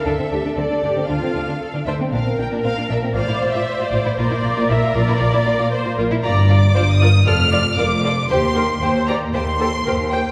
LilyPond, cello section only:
\new Staff \with { instrumentName = "Cello section" } { \clef bass \time 4/4 \key bes \lydian \tempo 4 = 116 d16 d16 d16 d16 d16 d16 d16 d16 d16 d16 d16 d16 r16 d16 d16 d16 | bes,16 bes,16 bes,16 bes,16 bes,16 bes,16 bes,16 bes,16 a,16 a,16 a,16 a,16 r16 a,16 a,16 a,16 | bes,16 bes,16 bes,16 bes,16 bes,16 bes,16 bes,16 bes,16 bes,16 bes,16 bes,16 bes,16 r16 bes,16 bes,16 bes,16 | \key c \dorian g,4 g,4 f,4 f,4 |
ees,4 ees,4 ees,4 ees,4 | }